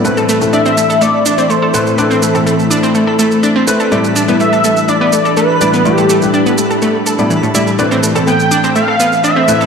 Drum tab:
SH |xxxxxxxxx-xxx-xx|xxxxxxxxx-xxx-xx|xxxxxxxxx-xxx-xx|xxxxxxxxx-xxxxxx|

SH |xxxxxxxxx-xxx-xx|